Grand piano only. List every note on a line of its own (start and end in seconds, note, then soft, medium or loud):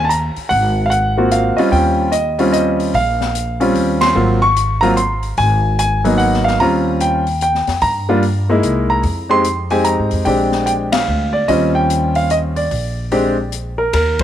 0.05 0.10 A5 medium
0.09 0.47 A#5 medium
0.49 0.83 F#5 medium
0.86 0.91 F5 medium
0.90 1.28 F#5 medium
1.17 1.55 A#3 medium
1.17 1.55 C4 soft
1.17 1.56 F4 medium
1.17 1.56 F#4 medium
1.32 1.58 F5 medium
1.57 2.10 G3 medium
1.57 2.10 C4 medium
1.57 2.11 C#4 medium
1.57 2.11 F4 medium
1.57 1.72 D#5 medium
1.72 2.10 G5 medium
2.12 2.51 D#5 medium
2.39 2.91 G3 medium
2.39 2.91 C4 medium
2.39 2.91 C#4 medium
2.39 2.92 F4 medium
2.52 2.91 D#5 medium
2.95 3.72 F5 medium
3.60 4.13 G3 medium
3.60 4.13 C4 medium
3.60 4.13 C#4 medium
3.60 4.13 F4 medium
4.01 4.43 C6 medium
4.15 4.39 F#3 medium
4.15 4.39 A#3 medium
4.15 4.39 C4 medium
4.15 4.39 F4 medium
4.42 4.80 C#6 loud
4.81 4.95 F#3 medium
4.81 4.96 A#3 medium
4.81 4.96 C4 medium
4.81 4.96 F4 medium
4.81 4.97 A#5 loud
4.97 5.39 C6 medium
5.38 5.76 G#5 medium
5.79 6.21 G#5 medium
6.04 6.57 F#3 medium
6.04 6.57 A#3 medium
6.04 6.57 B3 medium
6.04 6.57 D#4 medium
6.18 6.45 F#5 medium
6.44 6.58 F5 medium
6.60 7.22 G3 medium
6.60 7.22 C4 medium
6.60 7.22 C#4 medium
6.60 7.22 F4 medium
6.60 6.98 A#5 medium
7.01 7.41 G5 medium
7.42 7.80 G5 medium
7.82 8.59 A#5 medium
8.09 8.22 G3 medium
8.09 8.21 A#3 medium
8.09 8.22 D4 medium
8.09 8.22 F4 medium
8.49 9.01 G#3 medium
8.49 9.01 A#3 medium
8.49 9.02 D#4 medium
8.49 9.02 E4 medium
8.90 9.27 A#5 medium
9.29 9.43 G#3 medium
9.29 9.43 C4 medium
9.29 9.43 D#4 medium
9.29 9.43 G4 medium
9.29 9.72 C6 loud
9.70 10.23 G#3 medium
9.70 10.23 C4 medium
9.70 10.23 D#4 medium
9.70 10.23 G4 medium
9.70 9.86 G#5 medium
9.84 10.23 A#5 medium
10.25 11.40 G#3 medium
10.25 11.40 C4 medium
10.25 11.40 D4 medium
10.25 11.40 G4 medium
10.25 10.65 G5 medium
10.66 10.72 G5 medium
10.92 11.31 F5 medium
11.33 11.47 D5 medium
11.48 12.62 G3 medium
11.48 12.62 C4 medium
11.48 12.62 C#4 soft
11.48 12.63 F4 medium
11.48 11.73 D#5 medium
11.75 12.17 G5 medium
12.16 12.29 F5 medium
12.31 12.37 D#5 medium
12.56 13.48 D5 medium
13.12 13.35 G#3 medium
13.12 13.35 C4 medium
13.12 13.35 D4 medium
13.12 13.35 G4 medium
13.78 13.92 A#4 medium
13.94 14.18 A#4 medium